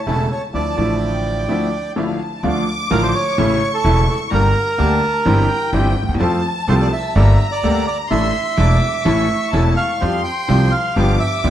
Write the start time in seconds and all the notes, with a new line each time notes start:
Already playing: A5
0.06 E1 E2 C#3 E3 A3 C#4 E4 A4
0.32 C#5
0.52 D2 D3 F3 A3 D4 E4 D5 A5
0.75 A1 A2 D3 F3 A3 D4 E4
0.80 E4
1.00 G5
1.48 D2 D3 F3 A3 D4 E4
1.96 A1 A2 D3 F3 A3 D4 E4 F5
2.20 A5
2.43 D2 D3 F3 A3 D4 F4 D6
2.91 A1 A2 D3 F3 A3 D4 F4 A#4
3.03 C5
3.15 C#5
3.37 A1 A2 C#3 E3 A3 C#4 E4 C#6
3.74 A4
3.84 E1 E2 C#3 E3 A3 C#4 E4
4.10 A4
4.31 G1 G2 D3 G3 A#3 D4 G4 A#4 A#5
4.78 D2 D3 G3 A#3 D4 G4 A5
5.25 G1 G2 E3 G3 C4 E4 G4 G5
5.73 G1 G2 E3 G3 C4 E4 G4
6.02 D2
6.08 D#2
6.14 E2
6.19 F2 F3 A3 C4 F4 A4 A5
6.68 C2 C3 F3 A3 C4 F4 A4 C5
6.82 D5
6.93 E5
7.15 G1 G2 G3 A#3 D4 G4 A4 A#5
7.51 D5
7.63 D2 D3 G3 A#3 D4 G4 A4
7.87 D5
8.10 A1 A2 E3 A3 D4 E4 A4 E5 C6
8.57 E1 E2 E3 A3 D4 E4 A4 D6
9.05 A1 A2 E3 A3 C#4 E4 A4 C#6
9.52 E1 E2 E3 A3 C#4 E4 A4 E5 A5
9.76 F5 C#6
9.99 F2 F3 G3 C4 F4 G4 C6
10.24 G5
10.48 C2 C3 F3 G3 C4 F4 G4
10.71 F5
10.95 G1 G2 F3 B3 D4 F4 G4 D6
11.20 E5
11.44 D2 D3 F3 B3 D4 F4 G4